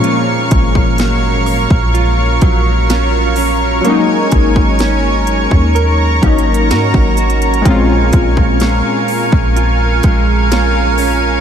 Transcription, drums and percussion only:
0.04 closed hi-hat medium
0.51 kick medium
0.51 closed hi-hat medium
0.75 kick medium
0.98 snare loud
0.98 closed hi-hat medium
1.46 open hi-hat medium
1.70 kick medium
1.95 closed hi-hat medium
2.41 kick medium
2.41 closed hi-hat medium
2.90 snare loud
2.90 closed hi-hat medium
3.36 open hi-hat medium
3.85 closed hi-hat medium
4.32 kick medium
4.32 closed hi-hat medium
4.56 kick medium
4.79 snare loud
4.79 closed hi-hat medium
5.27 closed hi-hat medium
5.51 kick medium
5.76 closed hi-hat medium
6.23 kick medium
6.23 closed hi-hat soft
6.38 closed hi-hat medium
6.54 closed hi-hat medium
6.71 snare loud
6.71 closed hi-hat medium
6.94 kick medium
7.17 closed hi-hat medium
7.17 open hi-hat medium
7.30 closed hi-hat medium
7.42 closed hi-hat medium
7.54 closed hi-hat medium
7.65 kick loud
7.65 closed hi-hat medium
8.13 kick loud
8.13 closed hi-hat medium
8.37 kick medium
8.60 snare loud
8.60 closed hi-hat medium
9.08 open hi-hat medium
9.32 kick medium
9.57 closed hi-hat medium
10.03 kick medium
10.03 closed hi-hat medium
10.52 snare loud
10.52 closed hi-hat medium
10.98 open hi-hat medium

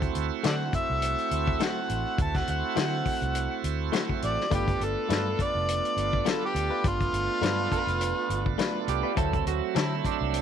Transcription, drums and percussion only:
0.02 kick medium
0.02 closed hi-hat soft
0.15 closed hi-hat medium
0.44 snare loud
0.44 closed hi-hat medium
0.73 kick medium
0.73 closed hi-hat medium
1.02 closed hi-hat medium
1.18 closed hi-hat soft
1.31 closed hi-hat medium
1.48 kick medium
1.60 snare loud
1.60 closed hi-hat medium
1.89 closed hi-hat medium
2.18 kick loud
2.18 closed hi-hat medium
2.35 kick medium
2.35 snare soft
2.35 closed hi-hat soft
2.47 closed hi-hat medium
2.77 snare loud
2.77 closed hi-hat medium
3.06 kick medium
3.06 open hi-hat medium
3.22 closed hi-hat soft
3.35 closed hi-hat medium
3.64 closed hi-hat medium
3.93 snare loud
3.93 closed hi-hat medium
4.09 kick medium
4.22 closed hi-hat medium
4.41 snare soft
4.51 kick loud
4.51 closed hi-hat medium
4.68 kick medium
4.68 closed hi-hat soft
4.81 closed hi-hat medium
5.10 snare loud
5.10 closed hi-hat medium
5.39 kick medium
5.39 closed hi-hat medium
5.68 closed hi-hat medium
5.85 closed hi-hat soft
5.97 closed hi-hat medium
6.13 kick medium
6.26 snare loud
6.26 closed hi-hat medium
6.56 closed hi-hat medium
6.84 kick loud
6.84 closed hi-hat medium
7.01 kick medium
7.01 closed hi-hat soft
7.14 closed hi-hat medium
7.43 snare loud
7.43 closed hi-hat medium
7.72 kick medium
7.72 closed hi-hat medium
7.88 closed hi-hat soft
8.01 closed hi-hat medium
8.30 closed hi-hat medium
8.46 kick medium
8.59 snare loud
8.59 closed hi-hat medium
8.88 closed hi-hat medium
9.17 kick loud
9.17 closed hi-hat medium
9.33 kick medium
9.33 closed hi-hat soft
9.47 closed hi-hat medium
9.76 snare loud
9.76 closed hi-hat medium
10.05 kick medium
10.05 closed hi-hat medium
10.34 closed hi-hat medium

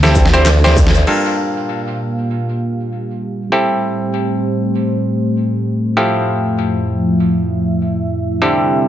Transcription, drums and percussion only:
0.03 snare medium
0.03 closed hi-hat soft
0.03 shaker soft
0.15 kick medium
0.15 shaker medium
0.26 snare medium
0.34 closed hi-hat medium
0.34 shaker soft
0.46 snare medium
0.46 clap loud
0.46 closed hi-hat medium
0.46 shaker soft
0.64 snare loud
0.64 closed hi-hat soft
0.64 shaker soft
0.77 kick loud
0.77 shaker medium
0.87 snare loud
0.95 closed hi-hat medium
0.95 shaker soft
1.07 crash medium

